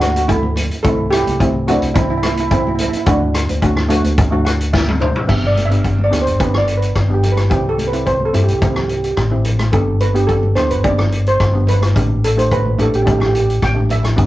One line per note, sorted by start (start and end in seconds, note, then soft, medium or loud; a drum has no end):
0.00 0.67 D2 medium
0.00 0.46 A3 medium
0.00 0.46 D4 medium
0.00 0.47 F#4 medium
0.00 0.09 F#4 medium
0.00 cross-stick medium
0.00 closed hi-hat medium
0.00 high conga medium
0.10 0.16 F#4 medium
0.16 0.26 F#4 medium
0.16 closed hi-hat medium
0.28 0.82 A3 medium
0.28 0.85 E4 loud
0.28 kick medium
0.28 closed hi-hat medium
0.43 high conga medium
0.56 closed hi-hat medium
0.56 low conga medium
0.71 closed hi-hat medium
0.83 1.23 C2 medium
0.83 1.18 A3 medium
0.83 1.18 C4 medium
0.83 1.19 E4 medium
0.83 1.11 E4 medium
0.83 1.13 A4 medium
0.83 kick loud
0.83 closed hi-hat medium
1.11 1.64 E4 medium
1.11 1.69 G4 loud
1.11 cross-stick medium
1.11 closed hi-hat medium
1.27 1.78 C2 medium
1.27 closed hi-hat medium
1.27 high conga medium
1.39 1.57 A3 medium
1.39 1.57 C4 medium
1.39 1.58 E4 medium
1.39 kick medium
1.39 closed hi-hat medium
1.67 2.35 A3 medium
1.67 2.35 C4 medium
1.67 1.95 D4 medium
1.67 2.35 E4 medium
1.67 1.97 F#4 medium
1.67 closed hi-hat medium
1.67 low conga medium
1.82 2.89 C2 medium
1.82 closed hi-hat medium
1.94 2.03 C4 medium
1.94 2.02 E4 medium
1.94 kick loud
1.94 closed hi-hat medium
2.03 2.09 E4 medium
2.10 2.16 E4 medium
2.17 2.24 E4 medium
2.23 2.31 E4 medium
2.23 cross-stick medium
2.23 closed hi-hat medium
2.23 high conga medium
2.32 2.39 E4 medium
2.37 2.48 E4 medium
2.37 closed hi-hat medium
2.51 2.60 C4 medium
2.51 2.59 E4 loud
2.51 kick medium
2.51 closed hi-hat medium
2.60 2.67 E4 medium
2.67 2.74 E4 medium
2.67 high conga medium
2.75 2.80 E4 medium
2.75 closed hi-hat loud
2.80 2.88 E4 medium
2.80 high conga medium
2.80 low conga medium
2.89 2.96 E4 medium
2.93 3.04 E4 medium
2.93 closed hi-hat medium
3.06 3.45 D2 loud
3.06 3.40 A3 medium
3.06 3.40 D4 medium
3.06 4.70 D4 medium
3.06 4.69 F#4 medium
3.06 3.41 F#4 medium
3.06 kick loud
3.06 closed hi-hat medium
3.34 cross-stick medium
3.34 closed hi-hat medium
3.49 4.01 D2 medium
3.49 closed hi-hat medium
3.49 high conga medium
3.62 3.79 A3 medium
3.62 3.80 D4 medium
3.62 3.80 F#4 medium
3.62 kick medium
3.62 closed hi-hat medium
3.77 cross-stick medium
3.89 4.14 A3 medium
3.89 4.15 D4 medium
3.89 4.15 F#4 loud
3.89 closed hi-hat medium
3.89 low conga medium
4.04 5.11 D2 medium
4.04 closed hi-hat medium
4.04 high conga medium
4.18 kick loud
4.18 closed hi-hat medium
4.31 4.90 A3 medium
4.31 4.90 D4 medium
4.31 4.90 F#4 medium
4.31 low conga medium
4.45 4.71 F#5 medium
4.45 cross-stick medium
4.45 closed hi-hat medium
4.61 closed hi-hat medium
4.73 4.99 E5 medium
4.73 kick medium
4.73 snare medium
4.88 high tom medium
4.88 high conga medium
5.00 5.27 C5 medium
5.00 mid tom medium
5.00 low conga medium
5.16 floor tom medium
5.27 6.08 G1 medium
5.27 5.53 B3 medium
5.27 5.53 D4 medium
5.27 5.54 G4 medium
5.27 5.46 E5 loud
5.27 kick medium
5.27 crash medium
5.47 5.66 D5 medium
5.57 closed hi-hat medium
5.57 high conga medium
5.65 6.04 E5 medium
5.70 5.95 B3 medium
5.70 5.96 D4 medium
5.70 5.96 G4 medium
5.70 closed hi-hat medium
5.84 kick medium
5.84 closed hi-hat soft
5.99 high conga medium
6.04 6.22 D5 medium
6.10 6.28 D2 medium
6.10 6.28 B3 medium
6.10 6.29 D4 medium
6.10 6.29 G4 medium
6.10 cross-stick medium
6.10 closed hi-hat medium
6.22 6.41 C5 medium
6.27 6.92 G1 medium
6.27 closed hi-hat medium
6.40 6.82 B3 medium
6.40 6.83 D4 medium
6.40 6.83 G4 medium
6.40 6.59 B4 medium
6.40 kick loud
6.40 closed hi-hat medium
6.40 high conga medium
6.54 6.77 D5 medium
6.54 cross-stick medium
6.54 low conga medium
6.67 closed hi-hat medium
6.77 7.15 B4 medium
6.82 closed hi-hat medium
6.96 7.47 G1 medium
6.96 kick medium
6.96 cross-stick medium
6.96 closed hi-hat medium
7.09 7.34 B3 medium
7.09 7.35 D4 soft
7.09 7.35 G4 medium
7.14 7.33 G4 medium
7.23 closed hi-hat medium
7.23 low conga medium
7.32 7.51 B4 medium
7.37 cross-stick medium
7.37 closed hi-hat medium
7.37 high conga medium
7.50 8.30 C2 medium
7.50 7.76 C4 medium
7.50 7.77 E4 medium
7.50 7.70 G4 medium
7.50 7.77 G4 medium
7.50 kick loud
7.50 closed hi-hat medium
7.69 7.89 A4 medium
7.78 closed hi-hat medium
7.78 high conga medium
7.87 8.07 B4 medium
7.92 8.18 C4 medium
7.92 8.18 E4 medium
7.92 8.19 G4 medium
7.92 closed hi-hat medium
8.06 8.24 C5 medium
8.06 kick medium
8.06 closed hi-hat medium
8.20 high conga medium
8.25 8.44 A4 medium
8.33 8.50 G2 medium
8.33 8.51 C4 medium
8.33 8.51 E4 medium
8.33 8.52 G4 medium
8.33 closed hi-hat medium
8.33 low conga medium
8.44 8.51 G4 medium
8.48 9.14 C2 medium
8.48 closed hi-hat medium
8.52 8.57 G4 soft
8.58 9.04 C4 medium
8.58 9.04 E4 medium
8.58 8.64 G4 medium
8.58 kick loud
8.58 closed hi-hat medium
8.58 high conga medium
8.63 9.05 G4 medium
8.63 8.72 G4 soft
8.74 8.81 G4 soft
8.74 cross-stick medium
8.74 low conga medium
8.82 8.87 G4 soft
8.88 8.96 G4 soft
8.88 closed hi-hat medium
8.97 9.03 G4 soft
9.04 9.10 G4 soft
9.04 closed hi-hat medium
9.11 9.18 G4 soft
9.17 9.69 A1 medium
9.17 kick medium
9.17 cross-stick medium
9.17 closed hi-hat medium
9.31 9.56 C4 medium
9.31 9.57 E4 medium
9.31 9.57 G4 medium
9.44 closed hi-hat medium
9.44 low conga medium
9.59 cross-stick medium
9.59 closed hi-hat medium
9.59 high conga medium
9.72 10.53 G1 loud
9.72 9.98 B3 medium
9.72 9.98 D4 medium
9.72 9.99 G4 medium
9.72 10.02 A4 medium
9.72 kick medium
9.72 closed hi-hat soft
10.00 10.14 B4 medium
10.00 closed hi-hat medium
10.00 high conga medium
10.14 10.40 B3 medium
10.14 10.40 D4 medium
10.14 10.29 G4 medium
10.14 10.41 G4 medium
10.14 closed hi-hat medium
10.27 10.57 A4 medium
10.27 kick medium
10.27 closed hi-hat medium
10.43 high conga medium
10.55 10.72 D2 medium
10.55 10.73 B3 medium
10.55 10.74 D4 medium
10.55 10.74 G4 medium
10.55 10.71 C5 medium
10.55 cross-stick medium
10.55 closed hi-hat medium
10.55 low conga medium
10.70 11.36 G1 medium
10.70 10.77 B4 medium
10.70 closed hi-hat medium
10.83 11.26 B3 medium
10.83 11.27 D4 medium
10.83 11.27 G4 medium
10.83 11.28 D5 medium
10.83 kick loud
10.83 closed hi-hat medium
10.83 high conga medium
10.98 cross-stick medium
10.98 low conga medium
11.12 closed hi-hat medium
11.26 11.70 C5 medium
11.26 closed hi-hat medium
11.40 11.92 G1 medium
11.40 kick medium
11.40 cross-stick medium
11.40 closed hi-hat medium
11.53 11.79 B3 medium
11.53 11.79 D4 soft
11.53 11.80 G4 medium
11.67 12.20 B4 medium
11.67 closed hi-hat medium
11.67 low conga medium
11.81 cross-stick medium
11.81 closed hi-hat medium
11.81 high conga medium
11.95 12.75 A1 loud
11.95 12.20 A3 medium
11.95 12.21 D4 medium
11.95 12.22 G4 medium
11.95 kick medium
11.95 closed hi-hat medium
12.24 12.39 A4 medium
12.24 closed hi-hat medium
12.36 12.62 A3 medium
12.36 12.63 D4 medium
12.36 12.63 G4 medium
12.36 12.44 C5 medium
12.36 closed hi-hat medium
12.52 12.80 B4 loud
12.52 kick medium
12.52 closed hi-hat medium
12.65 high conga medium
12.78 12.92 A1 medium
12.78 12.96 A3 medium
12.78 12.96 D4 medium
12.78 12.96 G4 medium
12.78 12.87 A4 medium
12.78 closed hi-hat medium
12.78 low conga medium
12.93 13.59 A1 medium
12.93 13.01 G4 medium
12.93 closed hi-hat medium
13.02 13.48 A3 medium
13.02 13.48 D4 medium
13.02 13.08 G4 medium
13.06 13.49 G4 medium
13.06 13.16 G4 medium
13.06 kick loud
13.06 closed hi-hat medium
13.06 high conga medium
13.19 13.25 G4 medium
13.19 cross-stick medium
13.19 low conga medium
13.27 13.32 G4 medium
13.34 13.39 G4 medium
13.34 closed hi-hat medium
13.40 13.46 G4 medium
13.50 closed hi-hat medium
13.62 14.14 A1 medium
13.62 13.76 G5 loud
13.62 kick medium
13.62 cross-stick medium
13.62 closed hi-hat soft
13.62 high conga medium
13.74 14.00 A3 medium
13.74 14.01 D4 medium
13.74 14.01 G4 medium
13.74 high conga medium
13.89 14.26 E5 loud
13.89 closed hi-hat medium
13.89 low conga medium
14.03 cross-stick medium
14.03 closed hi-hat medium
14.03 low conga medium
14.16 14.26 G1 loud
14.16 14.26 B3 medium
14.16 14.26 D4 medium
14.16 14.26 G4 medium
14.16 kick loud
14.16 closed hi-hat medium